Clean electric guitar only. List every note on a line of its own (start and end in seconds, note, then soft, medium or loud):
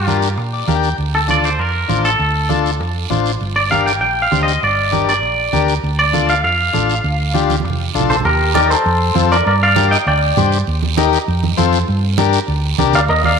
0.00 0.06 G4 medium
0.06 0.19 F4 medium
1.15 1.20 A4 medium
1.31 1.45 D5 medium
1.45 1.60 C5 medium
1.60 2.05 A#4 medium
2.05 2.62 A4 medium
3.56 3.61 D5 medium
3.71 3.85 F5 medium
3.86 3.91 G5 medium
4.01 4.20 G5 medium
4.22 4.42 F5 medium
4.43 4.61 D#5 medium
4.64 5.05 D5 medium
5.09 5.65 D5 medium
5.99 6.29 D5 medium
6.30 6.43 F5 medium
6.44 7.91 F5 medium
8.10 8.16 A4 medium
8.10 8.15 C5 medium
8.25 8.53 G4 medium
8.25 8.53 A#4 medium
8.55 8.70 A#4 medium
8.55 8.69 D5 medium
8.70 9.28 A4 medium
8.70 9.27 C5 medium
9.32 9.46 A#4 medium
9.32 9.46 D5 medium
9.47 9.52 A#4 medium
9.47 9.52 D5 medium
9.63 9.91 D5 medium
9.63 9.90 F5 loud
9.91 9.97 D#5 medium
9.91 9.96 G5 loud
10.07 10.49 D5 medium
10.07 10.49 G5 loud
12.95 13.01 D5 medium
12.95 13.00 F5 medium
13.09 13.23 A#4 medium
13.09 13.24 D#5 medium
13.25 13.39 D5 medium
13.25 13.39 F5 medium